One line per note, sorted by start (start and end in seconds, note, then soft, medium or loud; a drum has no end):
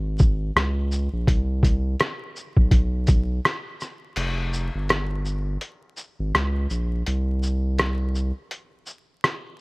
0.00 0.51 G#1 medium
0.18 kick medium
0.18 shaker soft
0.55 1.09 C#2 medium
0.55 cross-stick loud
0.55 closed hi-hat medium
0.92 shaker soft
1.13 1.29 A#1 medium
1.27 1.96 C2 loud
1.27 kick loud
1.27 closed hi-hat medium
1.63 kick medium
1.63 closed hi-hat medium
1.63 shaker soft
2.00 cross-stick loud
2.00 closed hi-hat medium
2.36 shaker soft
2.57 3.40 B1 medium
2.57 kick medium
2.71 kick medium
2.71 closed hi-hat medium
3.07 kick medium
3.07 closed hi-hat soft
3.07 shaker medium
3.45 cross-stick loud
3.45 closed hi-hat medium
3.81 cross-stick soft
3.81 shaker soft
4.16 4.70 F1 loud
4.16 closed hi-hat medium
4.16 crash medium
4.53 shaker medium
4.75 5.57 G1 medium
4.89 cross-stick loud
4.89 closed hi-hat medium
5.25 shaker soft
5.61 closed hi-hat medium
5.97 shaker soft
6.19 6.33 G#1 medium
6.35 6.67 C#2 loud
6.35 cross-stick loud
6.35 closed hi-hat medium
6.70 7.03 A#1 medium
6.70 shaker medium
7.06 8.32 C2 loud
7.06 closed hi-hat medium
7.43 shaker soft
7.79 cross-stick loud
7.79 closed hi-hat medium
8.15 shaker soft
8.51 closed hi-hat medium
8.86 shaker soft
9.24 cross-stick loud
9.24 closed hi-hat medium